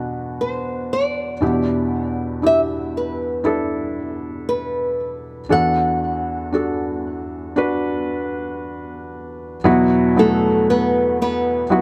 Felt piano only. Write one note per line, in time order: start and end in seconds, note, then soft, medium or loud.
0.00 1.38 E2 soft
0.00 1.31 B2 medium
0.00 1.38 E3 soft
0.00 1.43 B3 medium
0.00 1.41 D4 medium
0.00 1.43 F#4 medium
1.41 5.47 E2 medium
1.41 5.47 B2 medium
1.41 2.38 D4 medium
1.41 2.39 E4 medium
1.41 2.39 G4 medium
2.42 3.40 D4 medium
2.42 3.41 E4 soft
2.42 3.41 G4 medium
3.44 5.40 D4 medium
3.44 5.40 E4 medium
3.44 5.41 A4 medium
5.49 9.62 E2 medium
5.49 9.62 E3 medium
5.49 6.48 D4 medium
5.49 6.49 F#4 medium
5.49 6.49 A4 medium
6.52 7.51 D4 medium
6.52 7.52 F#4 medium
6.52 7.52 A4 medium
7.56 9.55 D4 medium
7.56 9.56 F#4 medium
7.56 9.56 B4 medium
9.64 11.81 E2 medium
9.64 11.81 B2 medium
9.64 10.14 F#3 medium
9.64 10.14 B3 medium
9.64 10.14 E4 medium
9.64 10.15 F#4 medium
10.16 11.63 F#3 medium
10.16 11.63 B3 medium
10.16 11.63 E4 medium
10.16 11.63 F#4 medium
11.70 11.81 F#3 medium
11.70 11.81 B3 medium
11.70 11.81 E4 medium
11.70 11.81 F#4 medium